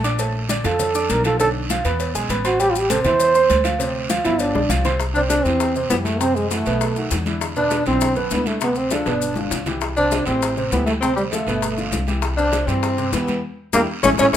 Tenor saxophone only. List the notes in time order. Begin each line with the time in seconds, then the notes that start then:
5.14 D4
5.29 D4
5.44 C4
5.90 B3
6.04 A3
6.20 C4
6.34 G#3
6.50 A3
7.57 D4
7.87 C4
8.33 B3
8.48 A3
8.63 B3
8.78 C4
8.92 D4
9.96 D4
10.26 C4
10.71 B3
10.86 A3
11.00 C4
11.16 G3
11.32 A3
12.37 D4
12.67 C4
13.13 B3
13.74 A#3
14.03 C#4
14.19 C#4
14.33 C#4